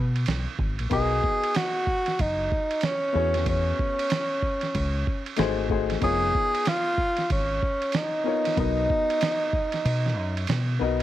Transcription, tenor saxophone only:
Already playing: B3
0.93 G#4
1.57 F#4
2.21 D#4
2.85 C#4
3.49 C#4
6.04 G#4
6.68 F4
7.32 C#4
7.96 D#4
8.60 D#4

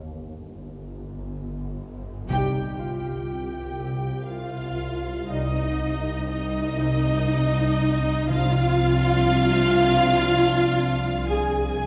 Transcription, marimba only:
2.30 C3
2.81 C3
3.30 C4
3.80 C3
4.80 C4
5.29 C3
5.79 C3
6.29 C4
6.78 C3
7.30 C3
7.80 C4
8.29 C3
8.79 C3
9.30 C4
9.80 C3
10.30 C3
10.81 C4
11.30 C3
11.80 C3

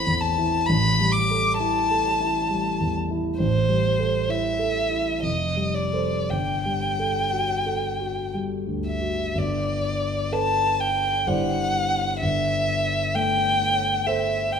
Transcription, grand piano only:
Already playing: A1 C4 E4 A4
0.07 E2
0.38 E4
0.69 A1
1.00 G3
1.31 A4
1.60 E4
1.91 A4
2.20 E4
2.50 G3
2.81 E2
3.10 E4
3.39 A1
3.69 G3
3.99 A4
4.29 E4
4.59 A4
4.90 E4
5.23 F1
5.57 G3
5.93 A4 C5
6.30 G1
6.65 G3
6.99 A4
7.32 F#4
7.66 A4
8.00 F#4
8.34 G3
8.67 D2
9.02 F#4
9.35 G1
10.32 A4 B4
11.27 G1 G3 E4 C5 D5
12.22 G1
13.15 A3
14.07 A4 C5

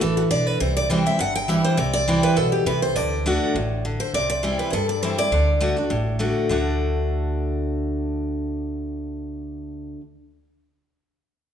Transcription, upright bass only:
0.01 A1
0.30 B1
0.61 C2
1.19 G1
1.78 C2
2.37 B1
2.66 C2
2.96 D2
3.55 A1
4.14 C2
4.73 G2
5.31 D2
5.91 A1
6.50 D2

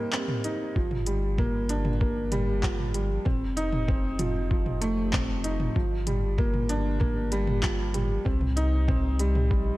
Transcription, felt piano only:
Already playing: G3 A#3 C4 D#4
0.13 C4
0.44 D#4
0.76 F3
1.07 G3
1.38 A#3
1.70 D4
2.01 A#3
2.32 G3
2.63 F3
2.94 G3
3.25 C4
3.57 D#4
3.88 C4
4.19 F3
4.51 F3
4.81 A3
5.13 C4
5.44 D#4
5.76 F3
6.07 G3
6.38 A#3
6.69 D4
7.00 A#3
7.32 G3
7.63 F3
7.94 G3
8.25 C4
8.56 D#4
8.88 C4
9.20 G3
9.50 G3

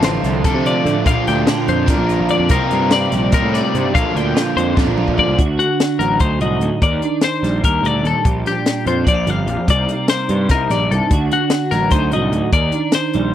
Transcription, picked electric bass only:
Already playing: A1
0.23 C2
0.54 C3
0.85 D3
1.06 A#1
1.28 D2
1.68 F2
1.99 A#1
2.19 A#1
2.40 F2
2.50 C2
2.71 G2
3.13 A#1
3.43 A2
3.75 C3
3.95 A#1
4.15 D2
4.56 F2
4.88 A#1
5.08 A#1
5.28 C2
5.39 D2
6.00 A1
6.20 D2
6.40 C2
6.60 D2
6.82 D#2
7.43 A#1
7.64 D#2
7.83 D2
8.03 D#2
8.25 A#1
8.86 F2
9.07 A#1
9.27 G1
9.47 A#1
9.68 C2
10.29 G2
10.50 C2
10.70 A#1
10.91 C2
11.11 D2
11.72 A1
11.91 D2
12.12 C2
12.32 D2
12.52 D#2
13.15 A#1

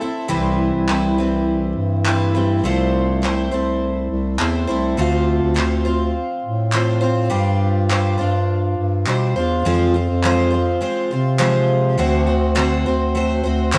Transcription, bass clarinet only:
0.30 C2
0.73 C2
1.76 G2
2.63 C2
3.52 C2
4.10 C2
4.39 E2
4.69 C2
4.98 D2
5.42 D2
6.44 A2
7.32 G2
8.19 G2
8.77 G2
9.07 B2
9.36 E2
9.65 F2
10.09 F2
11.12 C3
11.98 D2
12.86 D2
13.44 D2
13.74 F#2

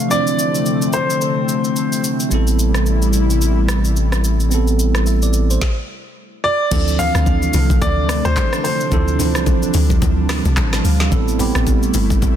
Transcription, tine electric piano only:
0.09 F3 C4 D4 E4
0.14 C5
2.29 G3 B3 C4 E4
2.34 A4
4.49 G3 B3 C4
4.53 E4 A4
5.07 E5
5.23 D5
5.50 C5
6.71 F3 C4 D4 E4 A4
6.98 E3 F3 C4 D4 A4
8.91 F3 C4 D4 E4 A4
9.18 E3 C4 D4 E4 C5
9.25 F3
10.57 A5
10.85 F5
11.11 G3 B3 C4 E4 A4
11.38 G3 B3 C4 E4 G4

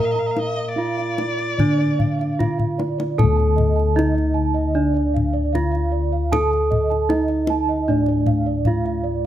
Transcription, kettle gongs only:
Already playing: A#2 A#4
0.76 D#4
1.58 D3
2.40 D#4
3.19 A4
3.24 D2
3.97 D#4
5.54 D#4
6.32 A4
7.11 D#4
7.89 A2
8.67 D#4

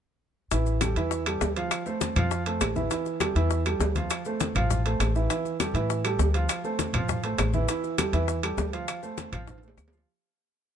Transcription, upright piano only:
0.52 E3 E4 E5
0.82 G3 G4 A4
0.97 E3 E4 E5
1.27 G3 G4 A4
1.57 F3 F4 F5
1.86 A3 A4 C5
2.16 F3 F4 F5
2.46 A3 A4 C5
2.76 E3 E4 E5
2.91 E3 E4 E5
3.21 G3 G4 A4
3.36 E3 E4 E5
3.66 G3 G4 A4
3.96 F3 F4 F5
4.26 A3 A4 C5
4.56 F3 F4 F5
4.85 A3 A4 C5
5.16 E3 E4 E5
5.30 E3 E4 E5
5.60 G3 G4 A4
5.74 E3 E4 E5
6.05 G3 G4 A4
6.34 F3 F4 F5
6.64 A3 A4 C5
6.94 F3 F4 F5
7.24 A3 A4 C5
7.54 E3 E4 E5
7.69 E3 E4 E5
7.99 G3 G4 A4
8.13 E3 E4 E5
8.43 G3 G4 A4
8.73 F3 F4 F5
9.03 A3 A4 C5
9.32 F3 F4 F5
9.62 A3 A4 C5
9.92 F3 F4 F5

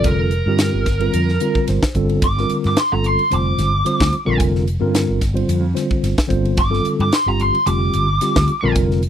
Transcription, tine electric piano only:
Already playing: D3 G3 C4 F4 A4
0.47 D3 G3 C4 F4 G4
1.00 D3 G3 C4 F4 A#4
1.41 D3 G3 C4 F4 A#4
1.69 C5
1.95 D3 G3 C4 F4 A4
2.39 D3 G3 C4 F4 A#4
2.92 D3 G3 C4 F4 A4
3.30 D3 G3 C4 F4 C5
3.85 D3 G3 C4 F4 C5
4.25 D3 G3 C4 F4 A#4
4.80 D3 G3 C4 F4 A#4
5.34 D3 G3 C4 F4 C5
5.74 D3 G3 C4 F4 C5
6.27 D3 G3 C4 F4 C5
6.70 D3 G3 C4 F4 A4
7.27 D3 G3 C4 F4 G4
7.66 D3 G3 C4 F4 G4
8.21 D3 G3 C4 F4 G4
8.62 D3 G3 C4 F4 A#4

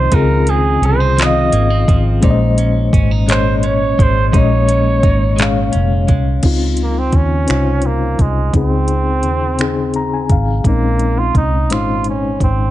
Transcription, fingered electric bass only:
0.13 C#2
0.82 C2
1.53 G#1
1.89 G#1
2.24 A#1
2.94 G#1
3.99 G#1
4.34 A#1
5.04 G#1
5.75 F1
6.09 C2
6.44 C#2
7.14 D#2
7.50 C2
8.19 C2
8.54 C#2
9.25 D#2
10.31 G#1
10.65 A#1
11.35 C2
11.71 G#1
12.41 G#1

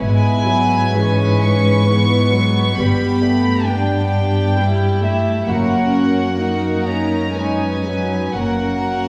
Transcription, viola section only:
0.01 G#3 B3
0.46 F#3
0.95 E3 G#3
1.90 E3 G#3
2.33 F#3
2.78 G3 B3
3.22 A3
3.67 B3
4.58 G3
5.03 A3
5.48 A#3 C#4
6.39 A#3 D#4
7.34 G#3
7.84 F#3
8.35 A#3 C#4

